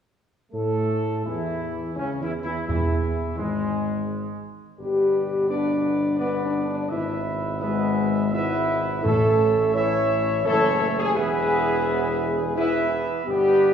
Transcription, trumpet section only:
0.53 1.22 A4 medium
1.26 1.98 E4 medium
1.97 2.08 C#4 medium
2.21 2.32 E4 medium
2.43 2.66 E4 medium
2.67 3.34 E4 medium
3.37 4.39 G#3 medium
4.78 5.45 B4 medium
4.78 5.45 D5 medium
5.49 6.15 B4 medium
5.49 6.15 D5 medium
6.18 6.85 B4 medium
6.18 6.85 D5 medium
6.87 7.55 B4 medium
6.87 7.59 E5 medium
7.60 8.28 B4 medium
7.60 8.28 E5 medium
8.32 9.01 B4 medium
8.32 9.01 E5 medium
9.04 9.74 C#5 medium
9.04 9.71 E5 medium
9.75 10.42 C#5 medium
9.75 10.42 E5 medium
10.45 10.97 C#5 medium
10.45 10.97 E5 medium
11.14 12.52 B4 medium
11.14 12.52 E5 medium
12.57 13.23 B4 medium
12.57 13.23 E5 medium
13.28 13.74 B4 medium
13.28 13.74 D5 medium

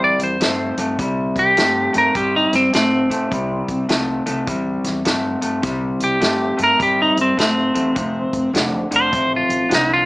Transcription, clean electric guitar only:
0.00 0.36 C3 medium
0.00 0.37 G3 loud
0.40 0.74 C3 medium
0.40 0.74 A3 medium
0.78 0.97 C3 medium
0.78 0.97 A3 medium
0.99 1.53 C3 medium
0.99 1.53 G3 medium
1.57 1.90 C3 medium
1.57 1.90 A3 loud
1.93 2.12 C3 medium
1.93 2.12 A3 medium
2.15 2.68 C3 medium
2.15 2.69 G3 loud
2.73 3.06 C3 medium
2.73 3.06 A3 loud
3.10 3.29 C3 medium
3.10 3.29 A3 medium
3.31 3.85 C3 medium
3.31 3.85 G3 medium
3.89 4.22 C3 medium
3.89 4.22 A3 loud
4.26 4.45 C3 medium
4.26 4.45 A3 loud
4.47 5.01 C3 medium
4.47 5.01 G3 medium
5.05 5.38 C3 medium
5.05 5.39 A3 medium
5.42 5.61 C3 medium
5.42 5.61 A3 medium
5.62 6.17 C3 medium
5.62 6.17 G3 medium
6.20 6.54 C3 medium
6.20 6.54 A3 medium
6.57 6.77 C3 medium
6.57 6.77 A3 medium
6.79 7.33 C3 medium
6.79 7.33 G3 medium
7.37 7.71 C3 medium
7.37 7.71 A3 medium
7.74 7.93 C3 medium
7.74 7.93 A3 medium
7.95 8.49 F2 medium
7.95 8.49 C3 medium
8.54 8.87 F2 medium
8.54 8.87 D3 medium
8.91 9.10 F2 medium
8.91 9.10 D3 medium
9.11 9.66 F2 medium
9.11 9.66 C3 medium
9.69 10.03 F2 medium
9.69 10.03 D3 medium

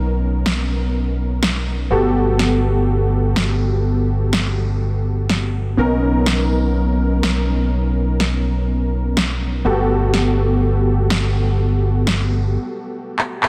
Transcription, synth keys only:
0.00 1.89 B3 medium
0.00 1.89 C#4 medium
0.00 1.89 D#4 medium
0.00 1.89 A#4 medium
1.91 5.76 B3 medium
1.91 5.76 F#4 medium
1.91 5.76 G4 medium
1.91 5.77 A4 medium
5.77 9.63 B3 medium
5.77 9.63 C#4 medium
5.77 9.63 D#4 medium
5.77 9.64 A#4 medium
9.65 13.49 B3 medium
9.65 13.49 F#4 medium
9.65 13.49 G4 medium
9.65 13.49 A4 medium

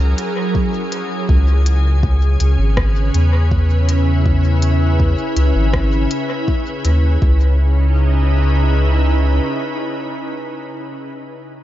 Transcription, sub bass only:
0.00 0.15 C#2 medium
1.29 2.37 C#2 loud
2.40 2.57 C#2 medium
2.59 3.11 G#1 medium
3.14 5.15 E2 medium
5.36 5.53 C#2 medium
5.55 6.07 G#1 medium
6.85 7.18 D#2 medium
7.22 9.40 C#2 loud

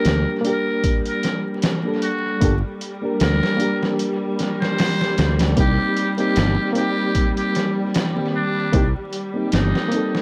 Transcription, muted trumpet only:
0.00 0.40 A#4 medium
0.46 1.00 A#4 loud
1.08 1.42 A#4 medium
2.03 2.58 F#4 medium
3.22 3.93 A#4 loud
4.61 5.44 C5 loud
5.60 6.13 G4 loud
6.20 6.71 G4 loud
6.78 7.32 G4 loud
7.38 7.73 G4 medium
8.36 8.90 D4 loud
9.55 10.22 D#4 loud

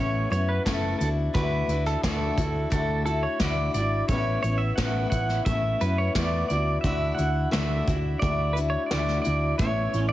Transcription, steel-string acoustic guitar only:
0.00 0.31 A3 soft
0.00 0.31 B3 medium
0.00 0.32 C#4 medium
0.00 0.29 E4 medium
0.30 0.66 B3 soft
0.30 0.66 C#4 soft
0.30 0.66 E4 soft
0.66 1.00 A2 medium
0.66 1.00 A3 medium
0.66 1.01 B3 medium
0.66 1.01 C#4 medium
0.66 0.99 E4 medium
1.00 1.34 D4 soft
1.00 1.35 E4 soft
1.00 1.35 F#4 soft
1.34 1.69 D3 medium
1.34 1.69 A3 medium
1.34 1.69 D4 medium
1.34 1.68 E4 medium
1.34 1.70 F#4 medium
1.69 2.03 D4 soft
1.69 2.04 E4 soft
1.69 2.03 F#4 soft
2.04 2.38 D3 medium
2.04 2.38 A3 medium
2.04 2.38 D4 medium
2.04 2.37 E4 medium
2.04 2.38 F#4 medium
2.38 2.71 D4 soft
2.38 2.72 E4 soft
2.38 2.72 F#4 soft
2.70 3.06 A3 medium
2.70 3.06 D4 medium
2.70 3.07 F#4 medium
2.74 3.04 E4 medium
3.05 3.41 D4 soft
3.05 3.40 E4 medium
3.05 3.42 F#4 soft
3.41 3.76 D3 medium
3.41 3.76 A3 medium
3.41 3.76 D4 medium
3.41 3.75 E4 medium
3.41 3.76 F#4 medium
3.76 4.11 D4 soft
3.76 4.10 E4 medium
3.76 4.11 F#4 soft
4.11 4.44 A2 medium
4.11 4.45 A3 medium
4.11 4.44 B3 medium
4.11 4.45 C#4 medium
4.11 4.43 E4 medium
4.44 4.79 B3 soft
4.44 4.78 C#4 soft
4.44 4.78 E4 soft
4.78 5.13 A2 medium
4.78 5.13 A3 medium
4.78 5.14 B3 medium
4.78 5.13 C#4 medium
4.78 5.12 E4 medium
5.13 5.48 B3 soft
5.13 5.49 C#4 soft
5.13 5.47 E4 soft
5.48 5.82 A3 medium
5.48 5.81 B3 medium
5.48 5.82 C#4 soft
5.48 5.79 E4 medium
5.81 6.16 B3 soft
5.81 6.17 C#4 soft
5.81 6.15 E4 soft
6.17 6.50 A2 medium
6.17 6.50 A3 medium
6.17 6.51 B3 medium
6.17 6.49 E4 medium
6.50 6.84 D4 soft
6.50 6.84 E4 soft
6.50 6.84 F#4 soft
6.84 7.18 D3 medium
6.84 7.19 A3 medium
6.84 7.19 D4 medium
6.84 7.16 E4 medium
6.84 7.18 F#4 medium
7.18 7.51 D4 soft
7.18 7.52 E4 soft
7.18 7.51 F#4 soft
7.51 7.86 D3 medium
7.51 7.86 A3 medium
7.51 7.87 D4 medium
7.51 7.86 E4 medium
7.51 7.87 F#4 medium
7.87 8.20 D4 soft
7.87 8.22 E4 soft
7.87 8.22 F#4 soft
8.21 8.56 A3 medium
8.21 8.56 D4 medium
8.21 8.54 E4 medium
8.21 8.56 F#4 medium
8.55 8.90 D4 soft
8.55 8.90 E4 soft
8.55 8.90 F#4 soft
8.91 9.25 D3 medium
8.91 9.25 A3 medium
8.91 9.25 D4 medium
8.91 9.22 E4 medium
8.91 9.24 F#4 medium
9.24 9.60 D4 soft
9.24 9.59 E4 soft
9.24 9.60 F#4 soft
9.60 9.94 A2 medium
9.60 9.94 A3 medium
9.60 9.94 B3 medium
9.60 9.95 C#4 medium
9.60 9.93 E4 medium
9.94 10.12 B3 soft
9.94 10.12 C#4 soft
9.94 10.12 E4 soft

